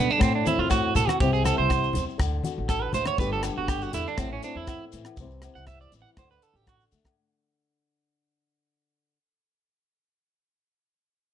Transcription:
Already playing: G2 D3 B3 D4 G4
0.10 D4, shekere
0.19 A2, kick, cross-stick, low agogo, shekere
0.23 C4
0.35 D4
0.46 C4 E4, closed hi-hat, high conga, shekere
0.58 E2 F4
0.70 A2 F#4, kick, cross-stick, low agogo, shekere
0.95 A2 B2 A4, closed hi-hat, high conga, low conga, shekere
1.07 F#4, cross-stick, high conga, low agogo
1.20 C2 C3 E3 G3 C4 E4 G4, kick, shekere
1.33 G#4, shekere
1.44 C4 A4, cross-stick, closed hi-hat, high conga, low agogo, shekere
1.58 C2 C5
1.69 kick, cross-stick, low agogo, shekere
1.83 shekere
1.93 E2, closed hi-hat, low conga, shekere
2.09 shekere
2.18 D2 D3, kick, cross-stick, low agogo, shekere
2.44 F#4, closed hi-hat, high conga, shekere
2.58 A1
2.69 A4, kick, cross-stick, low agogo, shekere
2.82 B4
2.93 A1 A3 C5, closed hi-hat, high conga, low conga, shekere
3.06 C#5, cross-stick, high conga, low agogo
3.18 G1 G2 D3 B3 D4 G4 B4, kick, shekere
3.33 A4, shekere
3.43 D4, muted clean electric guitar stroke, cross-stick, closed hi-hat, low agogo, shekere
3.57 G1 F#4
3.68 G4, kick, cross-stick, low agogo, shekere
3.81 F#4, shekere
3.93 E2 D3 E4, closed hi-hat, shekere
4.07 D4, shekere
4.18 A1 A2 C4, kick, cross-stick, low agogo, shekere
4.33 C#4
4.43 C4 D4, closed hi-hat, shekere
4.55 E2 E4
4.67 E4, kick, cross-stick, low agogo, shekere
4.92 A2 E3, closed hi-hat, shekere
5.05 cross-stick, low agogo
5.17 C2 C3, kick, shekere
5.21 E3 G3 C4 E4
5.31 shekere
5.42 C4, cross-stick, closed hi-hat, low agogo, shekere
5.55 C2 F#5, shekere
5.67 E5, kick, cross-stick, low agogo, shekere
5.81 D5, shekere
5.92 A1 E3, closed hi-hat, shekere
6.02 F#5
6.06 shekere
6.17 D2 D3 C5, kick, cross-stick, low agogo, shekere
6.31 B4, shekere
6.42 A4, closed hi-hat, shekere
6.54 A1 F#4 G4, shekere
6.67 F#4, kick, cross-stick, low agogo, shekere
6.80 shekere
6.92 D3 A3, closed hi-hat, shekere
7.05 kick, cross-stick, low agogo

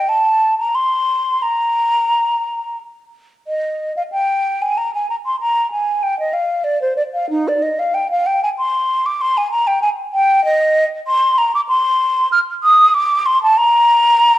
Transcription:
Already playing: G5
0.09 A5
0.59 A#5
0.75 C6
1.42 A#5
3.47 D#5
3.96 F5
4.12 G5
4.62 G#5
4.77 A#5
4.94 G#5
5.09 A#5
5.26 C6
5.40 A#5
5.72 G#5
6.03 G5
6.19 D#5
6.33 F5
6.64 D5
6.81 C5
6.96 D5
7.13 F5
7.30 D#4
7.48 D5
7.62 D#5
7.79 F5
7.94 G5
8.11 F5
8.26 G5
8.43 G#5
8.58 C6
9.06 D6
9.21 C6
9.37 G#5
9.51 A#5
9.67 G5
9.82 G#5
10.13 G5
10.44 D#5
11.07 C6
11.38 A#5
11.54 D6
11.68 C6
12.32 F6
12.63 D#6
12.94 D6
13.26 C6
13.43 A5
13.57 A#5

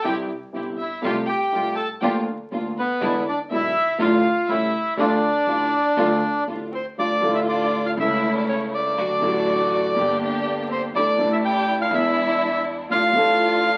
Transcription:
0.02 C2 C3 E3 G3 C4 E4 G4 G5
0.52 G1 G2 C3 E3 G3 C4 E4 G4
0.78 E4 E5
1.02 C2 C3 G3 A3 F4 G4 F5
1.26 G4 G5
1.52 C2 C3 G3 A3 F4 G4
1.75 A4 A5
2.01 D2 D3 F3 A#3 D4 F4 G4 G5
2.51 D2 D3 F3 A#3 D4 F4
2.77 B3 B4
3.01 E2 D3 E3 G#3 B3 D4 E4
3.26 D4 D5
3.50 B1 B2 D3 G#3 B3 D4 E4 E5
3.54 E4
3.98 A1 A2 D3 F3 A3 D4 F4 F5
4.48 A1 A2 C#3 G3 A3 C#4 E4 G4 E5
4.97 D2 D3 F3 A3 D4 F4 D5
5.47 A1 A2 D3 F3 A3 D4 F4
5.97 D2 D3 F3 A3 D4 F4
6.47 A1 A2 D3 F3 A3 D4 F4
6.72 C4 C5
6.97 D2 D3 F3 A3 D4 F4 D5
7.21 A1 A2 D3 F3 A3 D4 F4
7.34 E4 E5
7.47 D4 D5
7.86 F4 F5
7.97 C#2 C#3 E3 A3 C#4 E4 E5
8.01 E4
8.35 D4 D5
8.48 C#4 C#5
8.71 D4 D5
8.98 D2 D3 F#3 A3 D4 F#4
9.20 A1 A2 D3 F#3 A3 D4 F#4
9.95 G1 G2 D3 G3 A#3 D4 G4
10.69 C4 C5
10.94 D2 D3 E3 A3 D4 E4 A4 D5
11.17 A1 A2 E3 A3 D4 E4
11.21 A4
11.30 E4 E5
11.43 G4 G5
11.80 F4 F5
11.89 E2 E3 G#3 B3 D4 E4 E5
11.93 G#4
12.90 A1 A2 F3 A3 D4 F4 A4 F5
13.13 A1 A2 F3 A3 D4 F4
13.17 A4

